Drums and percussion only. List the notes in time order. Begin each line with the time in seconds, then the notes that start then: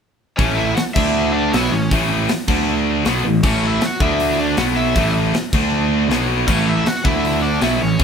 0.39 kick, open hi-hat
0.77 snare, open hi-hat
0.96 kick, crash
1.53 snare, open hi-hat
1.91 kick, open hi-hat
2.29 snare, open hi-hat
2.48 kick, crash
3.05 snare, open hi-hat
3.43 kick, crash
3.81 snare, open hi-hat
4.00 kick
4.20 open hi-hat
4.57 snare, open hi-hat
4.96 kick, open hi-hat
5.34 snare, open hi-hat
5.53 kick, crash
6.11 snare, open hi-hat
6.48 kick, crash
6.86 snare, open hi-hat
7.05 kick
7.25 open hi-hat
7.61 snare, open hi-hat
7.99 kick, open hi-hat